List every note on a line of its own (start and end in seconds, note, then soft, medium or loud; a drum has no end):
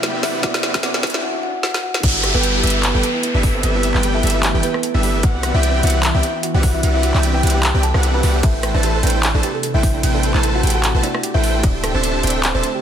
0.00 0.40 C3 medium
0.00 1.21 C3 medium
0.00 1.19 E3 medium
0.00 1.21 F#3 medium
0.00 0.41 B3 medium
0.00 1.19 B3 medium
0.00 0.21 C4 medium
0.00 1.21 D4 medium
0.00 0.11 E4 medium
0.00 0.42 E4 medium
0.00 0.42 F#4 medium
0.00 0.21 G4 medium
0.00 0.21 B4 medium
0.00 0.21 D5 medium
0.00 0.43 D5 medium
0.00 0.11 E5 medium
0.00 0.21 E5 medium
0.00 0.21 G5 medium
0.00 snare medium
0.00 closed hi-hat medium
0.00 riser medium
0.23 0.40 C4 medium
0.23 0.40 E4 medium
0.23 0.40 G4 medium
0.23 0.40 B4 medium
0.23 0.40 D5 medium
0.23 0.40 E5 medium
0.23 0.40 F#5 medium
0.23 snare medium
0.23 open hi-hat medium
0.41 0.80 C3 medium
0.41 0.81 B3 medium
0.41 0.72 C4 medium
0.41 0.82 E4 medium
0.41 0.60 F#4 medium
0.41 0.82 F#4 medium
0.41 0.72 G4 medium
0.41 0.83 D5 loud
0.41 0.72 F#5 medium
0.41 0.60 F#5 loud
0.41 kick loud
0.41 snare medium
0.41 closed hi-hat medium
0.54 snare medium
0.63 snare medium
0.63 closed hi-hat medium
0.74 0.82 C4 medium
0.74 0.82 G4 medium
0.74 0.82 B4 medium
0.74 0.82 D5 medium
0.74 0.82 E5 medium
0.74 0.82 G5 loud
0.74 kick loud
0.74 snare medium
0.81 1.21 C3 medium
0.81 1.21 B3 medium
0.81 1.12 C4 medium
0.81 1.22 E4 medium
0.81 1.00 F#4 medium
0.81 1.22 F#4 medium
0.81 1.12 G4 medium
0.81 1.12 B4 medium
0.81 1.12 D5 medium
0.81 1.23 D5 loud
0.81 1.12 E5 medium
0.81 1.12 F#5 medium
0.81 1.00 F#5 loud
0.81 snare medium
0.81 closed hi-hat medium
0.94 snare medium
1.03 kick medium
1.03 snare loud
1.03 closed hi-hat soft
1.07 closed hi-hat medium
1.10 closed hi-hat medium
1.14 1.22 C4 medium
1.14 1.22 E4 medium
1.14 1.22 G4 medium
1.14 1.22 B4 medium
1.14 1.22 D5 medium
1.14 1.22 E5 medium
1.14 1.22 G5 loud
1.14 snare medium
1.23 1.40 F#4 medium
1.23 1.40 F#5 loud
1.43 1.60 F#4 medium
1.43 1.60 F#5 loud
1.63 1.80 F#4 medium
1.63 1.80 F#5 loud
1.63 snare medium
1.74 snare medium
1.83 2.00 F#4 medium
1.83 2.00 F#5 loud
1.94 snare medium
2.03 2.32 G1 loud
2.03 8.39 E3 medium
2.03 2.32 G3 medium
2.03 5.20 A3 medium
2.03 5.20 B3 medium
2.03 2.20 D4 medium
2.03 2.07 E4 medium
2.03 2.32 G4 medium
2.03 5.20 G4 medium
2.03 2.32 A4 medium
2.03 2.32 B4 medium
2.03 2.20 D5 loud
2.03 2.32 E5 medium
2.03 kick loud
2.03 closed hi-hat medium
2.03 crash loud
2.03 downlifter medium
2.14 2.22 E4 medium
2.23 2.32 G4 loud
2.23 cross-stick medium
2.23 closed hi-hat medium
2.34 2.61 G1 loud
2.34 2.61 G3 loud
2.34 2.50 B3 medium
2.34 2.61 G4 medium
2.34 2.61 A4 medium
2.34 2.37 A4 loud
2.34 2.50 B4 loud
2.34 2.61 B4 medium
2.34 2.61 G5 loud
2.43 2.47 A4 medium
2.43 closed hi-hat medium
2.54 2.62 E4 medium
2.63 2.92 G1 loud
2.63 2.80 G3 medium
2.63 2.80 B3 medium
2.63 2.67 E4 medium
2.63 2.80 G4 medium
2.63 2.80 A4 medium
2.63 2.80 B4 medium
2.63 2.80 E5 loud
2.63 closed hi-hat medium
2.67 closed hi-hat medium
2.70 closed hi-hat medium
2.74 2.82 E4 medium
2.83 2.92 G4 loud
2.83 clap loud
2.83 closed hi-hat medium
2.94 3.02 G1 loud
2.94 3.04 G3 loud
2.94 3.16 B3 medium
2.94 3.04 G4 medium
2.94 3.04 A4 medium
2.94 2.97 A4 loud
2.94 3.04 B4 medium
2.94 3.16 B4 medium
2.94 3.04 G5 loud
3.03 3.07 A4 medium
3.03 closed hi-hat medium
3.14 3.21 E4 medium
3.23 3.27 E4 medium
3.23 closed hi-hat medium
3.34 3.61 G1 loud
3.34 3.61 G3 medium
3.34 3.44 D4 medium
3.34 3.42 E4 medium
3.34 3.61 G4 medium
3.34 3.61 A4 medium
3.34 3.61 B4 medium
3.34 3.45 D5 medium
3.34 3.61 E5 medium
3.43 3.52 G4 loud
3.43 kick medium
3.43 open hi-hat medium
3.54 3.65 C4 medium
3.54 3.57 A4 loud
3.54 3.64 C5 medium
3.63 3.92 G1 medium
3.63 3.92 G3 medium
3.63 3.92 G4 medium
3.63 3.67 A4 medium
3.63 3.92 A4 medium
3.63 3.92 B4 medium
3.63 3.92 E5 medium
3.63 closed hi-hat medium
3.74 3.96 B3 medium
3.74 3.82 E4 medium
3.74 3.96 B4 medium
3.83 3.87 E4 medium
3.83 closed hi-hat medium
3.94 4.21 G1 loud
3.94 4.21 G3 loud
3.94 4.02 E4 medium
3.94 4.21 G4 medium
3.94 4.21 A4 medium
3.94 4.21 B4 medium
3.94 4.21 G5 loud
3.94 clap soft
4.03 4.12 G4 loud
4.03 closed hi-hat medium
4.14 4.25 E4 medium
4.14 4.17 A4 loud
4.14 4.24 E5 medium
4.23 4.52 G1 loud
4.23 4.40 G3 loud
4.23 4.40 G4 medium
4.23 4.40 A4 medium
4.23 4.27 A4 medium
4.23 4.40 B4 medium
4.23 4.40 E5 loud
4.23 closed hi-hat soft
4.27 closed hi-hat medium
4.30 closed hi-hat medium
4.34 4.51 E4 medium
4.34 4.42 E4 medium
4.34 4.50 E5 loud
4.43 4.47 E4 medium
4.43 clap loud
4.43 closed hi-hat medium
4.54 4.62 G1 loud
4.54 4.64 G3 loud
4.54 4.61 E4 medium
4.54 4.64 G4 medium
4.54 4.64 A4 medium
4.54 4.64 B4 medium
4.54 4.64 G5 loud
4.63 4.80 B3 medium
4.63 4.72 G4 loud
4.63 4.80 B4 medium
4.63 closed hi-hat medium
4.74 4.77 A4 loud
4.74 cross-stick medium
4.83 4.87 A4 medium
4.83 closed hi-hat medium
4.94 5.25 G1 medium
4.94 5.21 G3 medium
4.94 5.10 D4 medium
4.94 5.01 E4 medium
4.94 5.21 G4 medium
4.94 5.21 A4 medium
4.94 5.21 B4 medium
4.94 5.10 D5 medium
4.94 5.21 E5 medium
5.03 5.07 E4 medium
5.03 open hi-hat medium
5.14 5.21 E4 medium
5.23 5.52 C2 loud
5.23 11.59 B3 medium
5.23 8.40 D4 medium
5.23 5.32 F#4 loud
5.23 5.40 F#4 medium
5.23 8.40 F#4 medium
5.23 5.52 F#5 medium
5.23 5.40 F#5 loud
5.23 kick loud
5.23 closed hi-hat medium
5.34 5.37 G4 loud
5.43 5.47 G4 medium
5.43 cross-stick medium
5.43 closed hi-hat medium
5.54 5.81 C2 loud
5.54 5.81 C4 loud
5.54 5.61 E4 medium
5.54 5.71 E4 medium
5.54 5.81 G4 medium
5.54 5.81 B4 medium
5.54 5.81 D5 medium
5.54 5.81 E5 medium
5.54 5.71 E5 loud
5.54 5.81 G5 loud
5.63 5.67 E4 medium
5.63 closed hi-hat medium
5.74 5.82 E4 medium
5.83 6.12 C2 loud
5.83 6.00 C4 loud
5.83 6.00 E4 medium
5.83 5.92 F#4 loud
5.83 6.00 G4 medium
5.83 6.00 B4 medium
5.83 6.00 D5 medium
5.83 6.00 E5 medium
5.83 6.00 F#5 loud
5.83 closed hi-hat soft
5.87 closed hi-hat medium
5.90 closed hi-hat medium
5.94 5.97 G4 loud
6.03 clap loud
6.03 closed hi-hat medium
6.14 6.22 C2 loud
6.14 6.23 C4 loud
6.14 6.21 E4 medium
6.14 6.36 E4 medium
6.14 6.23 G4 medium
6.14 6.24 B4 medium
6.14 6.23 D5 medium
6.14 6.23 E5 medium
6.14 6.36 E5 medium
6.14 6.24 G5 loud
6.23 6.27 E4 medium
6.23 closed hi-hat medium
6.34 6.41 E4 medium
6.43 6.52 F#4 loud
6.43 closed hi-hat medium
6.54 6.81 C2 loud
6.54 6.81 C4 medium
6.54 6.64 F#4 medium
6.54 6.57 G4 loud
6.54 6.81 G4 medium
6.54 6.81 B4 medium
6.54 6.81 D5 medium
6.54 6.81 E5 medium
6.54 6.81 F#5 medium
6.54 6.65 F#5 medium
6.63 6.67 G4 medium
6.63 kick medium
6.63 open hi-hat medium
6.74 6.81 E4 medium
6.74 6.84 E4 medium
6.74 6.84 E5 medium
6.83 7.12 C2 loud
6.83 7.12 C4 medium
6.83 6.87 E4 medium
6.83 7.12 G4 medium
6.83 7.12 B4 medium
6.83 7.12 D5 medium
6.83 7.12 E5 medium
6.83 7.12 F#5 medium
6.83 closed hi-hat medium
6.94 7.01 E4 medium
6.94 7.16 E4 medium
6.94 7.16 E5 loud
7.03 7.12 F#4 loud
7.03 closed hi-hat medium
7.14 7.42 C2 loud
7.14 7.41 C4 loud
7.14 7.17 G4 loud
7.14 7.41 G4 medium
7.14 7.41 B4 medium
7.14 7.41 D5 medium
7.14 7.41 E5 medium
7.14 7.41 G5 loud
7.14 clap soft
7.23 7.27 G4 medium
7.23 closed hi-hat medium
7.34 7.41 E4 medium
7.34 7.44 G4 medium
7.34 7.44 G5 medium
7.43 7.72 C2 loud
7.43 7.60 C4 medium
7.43 7.47 E4 medium
7.43 7.60 G4 medium
7.43 7.60 B4 medium
7.43 7.60 D5 medium
7.43 7.60 E5 medium
7.43 7.60 F#5 loud
7.43 closed hi-hat soft
7.47 closed hi-hat medium
7.50 closed hi-hat medium
7.54 7.61 E4 medium
7.54 7.70 G4 medium
7.54 7.70 G5 medium
7.63 7.72 F#4 loud
7.63 clap loud
7.63 closed hi-hat medium
7.74 7.92 C2 loud
7.74 7.83 C4 loud
7.74 7.77 G4 loud
7.74 7.84 G4 medium
7.74 7.83 B4 medium
7.74 7.84 D5 medium
7.74 7.83 E5 medium
7.74 7.83 G5 loud
7.74 7.84 G5 loud
7.83 7.87 G4 medium
7.83 8.00 A4 medium
7.83 8.00 A5 medium
7.83 closed hi-hat medium
7.94 8.21 C2 loud
7.94 8.21 C4 medium
7.94 8.01 E4 medium
7.94 8.21 G4 medium
7.94 8.21 B4 medium
7.94 8.21 D5 medium
7.94 8.21 E5 medium
7.94 8.21 F#5 medium
7.94 cross-stick medium
8.03 8.07 E4 medium
8.03 closed hi-hat medium
8.14 8.21 E4 medium
8.14 8.30 B4 medium
8.14 8.30 B5 medium
8.23 8.41 C2 loud
8.23 8.40 C4 medium
8.23 8.32 F#4 loud
8.23 8.40 G4 medium
8.23 8.40 B4 medium
8.23 8.40 D5 medium
8.23 8.40 E5 medium
8.23 8.40 F#5 loud
8.23 open hi-hat medium
8.34 8.37 G4 loud
8.43 11.60 C3 medium
8.43 12.81 A3 medium
8.43 8.60 E4 medium
8.43 12.81 G4 medium
8.43 8.47 A4 medium
8.43 8.60 E5 loud
8.43 8.72 G5 medium
8.43 kick loud
8.43 closed hi-hat medium
8.43 ride medium
8.54 8.62 E4 medium
8.63 8.67 E4 medium
8.63 cross-stick medium
8.63 closed hi-hat medium
8.74 9.01 A1 medium
8.74 9.01 A3 loud
8.74 8.90 D4 medium
8.74 8.81 E4 medium
8.74 9.01 A4 medium
8.74 9.01 B4 medium
8.74 9.01 C5 medium
8.74 8.91 D5 medium
8.74 9.01 A5 loud
8.83 8.92 G4 loud
8.83 closed hi-hat medium
8.94 8.97 A4 loud
9.03 9.32 A1 loud
9.03 9.20 A3 medium
9.03 9.20 D4 medium
9.03 9.20 A4 medium
9.03 9.07 A4 medium
9.03 9.20 B4 medium
9.03 9.20 C5 medium
9.03 9.20 D5 medium
9.03 9.20 G5 loud
9.03 closed hi-hat soft
9.07 closed hi-hat medium
9.10 closed hi-hat medium
9.15 9.22 E4 medium
9.23 9.27 E4 medium
9.23 clap loud
9.23 closed hi-hat medium
9.23 ride soft
9.34 9.42 A1 loud
9.34 9.44 A3 loud
9.34 9.56 D4 medium
9.34 9.42 E4 medium
9.34 9.44 A4 medium
9.34 9.44 B4 medium
9.34 9.44 C5 medium
9.34 9.56 D5 medium
9.34 9.43 A5 loud
9.34 9.44 A5 loud
9.43 9.52 G4 loud
9.43 closed hi-hat medium
9.54 9.57 A4 loud
9.63 9.67 A4 medium
9.63 closed hi-hat medium
9.74 10.01 A1 loud
9.74 10.01 A3 medium
9.74 9.84 E4 medium
9.74 9.82 E4 medium
9.74 10.01 A4 medium
9.74 10.01 B4 medium
9.74 10.01 C5 medium
9.74 9.84 E5 medium
9.74 10.01 G5 medium
9.83 9.87 E4 medium
9.83 kick medium
9.83 open hi-hat medium
9.94 10.04 D4 medium
9.94 10.02 E4 medium
9.94 10.04 D5 medium
10.03 10.32 A1 loud
10.03 10.32 A3 medium
10.03 10.12 G4 loud
10.03 10.32 A4 medium
10.03 10.32 B4 medium
10.03 10.32 C5 medium
10.03 10.32 G5 medium
10.03 closed hi-hat medium
10.03 ride soft
10.14 10.36 D4 medium
10.14 10.17 A4 loud
10.14 10.36 D5 loud
10.23 10.27 A4 medium
10.23 closed hi-hat medium
10.34 10.61 A1 loud
10.34 10.61 A3 loud
10.34 10.42 E4 medium
10.34 10.61 A4 medium
10.34 10.61 B4 medium
10.34 10.61 C5 medium
10.34 10.61 A5 loud
10.34 clap soft
10.43 10.47 E4 medium
10.43 closed hi-hat medium
10.54 10.62 E4 medium
10.54 10.64 F#4 medium
10.54 10.64 F#5 medium
10.63 10.92 A1 loud
10.63 10.80 A3 medium
10.63 10.72 G4 loud
10.63 10.80 A4 medium
10.63 10.80 B4 medium
10.63 10.80 C5 medium
10.63 10.80 G5 loud
10.63 closed hi-hat soft
10.67 closed hi-hat medium
10.70 closed hi-hat medium
10.74 10.91 F#4 medium
10.74 10.77 A4 loud
10.74 10.91 F#5 loud
10.83 10.87 A4 medium
10.83 clap loud
10.83 closed hi-hat medium
10.83 ride soft
10.94 11.02 A1 loud
10.94 11.04 A3 loud
10.94 11.02 E4 medium
10.94 11.04 A4 medium
10.94 11.04 B4 medium
10.94 11.04 C5 medium
10.94 11.04 A5 loud
11.03 11.20 D4 medium
11.03 11.07 E4 medium
11.03 11.20 D5 medium
11.03 closed hi-hat medium
11.15 11.22 E4 medium
11.15 cross-stick medium
11.23 11.32 G4 loud
11.23 closed hi-hat medium
11.34 11.62 A1 loud
11.34 11.61 A3 medium
11.34 11.50 E4 medium
11.34 11.61 A4 medium
11.34 11.37 A4 loud
11.34 11.61 B4 medium
11.34 11.61 C5 medium
11.34 11.50 E5 medium
11.34 11.61 G5 medium
11.43 11.47 A4 medium
11.43 open hi-hat loud
11.55 11.62 E4 medium
11.63 12.81 D3 medium
11.63 12.81 C4 medium
11.63 11.92 D4 medium
11.63 11.80 D4 medium
11.63 11.67 G4 medium
11.63 11.92 A4 medium
11.63 11.92 C5 medium
11.63 11.80 D5 loud
11.63 11.92 E5 medium
11.63 11.92 G5 medium
11.63 kick loud
11.63 closed hi-hat medium
11.63 ride soft
11.75 11.82 G4 medium
11.83 11.92 A4 loud
11.83 cross-stick medium
11.83 closed hi-hat medium
11.94 12.22 D1 loud
11.94 12.10 C4 medium
11.94 12.21 D4 loud
11.94 12.21 A4 medium
11.94 12.10 C5 medium
11.94 12.21 C5 medium
11.94 11.97 C5 loud
11.94 12.21 E5 medium
11.94 12.21 A5 loud
12.03 12.07 C5 medium
12.03 closed hi-hat medium
12.15 12.22 G4 medium
12.23 12.52 D1 loud
12.23 12.40 C4 medium
12.23 12.40 D4 loud
12.23 12.27 G4 medium
12.23 12.40 A4 medium
12.23 12.40 C5 medium
12.23 12.40 E5 medium
12.23 12.40 G5 loud
12.23 closed hi-hat medium
12.27 closed hi-hat medium
12.30 closed hi-hat medium
12.34 12.42 G4 medium
12.43 12.52 A4 loud
12.43 clap loud
12.43 closed hi-hat medium
12.43 ride soft
12.54 12.62 D1 loud
12.54 12.76 C4 medium
12.54 12.64 D4 loud
12.54 12.64 A4 medium
12.54 12.64 C5 medium
12.54 12.57 C5 loud
12.54 12.76 C5 loud
12.54 12.64 E5 medium
12.54 12.64 A5 loud
12.63 12.67 C5 medium
12.63 closed hi-hat medium
12.74 12.81 G4 medium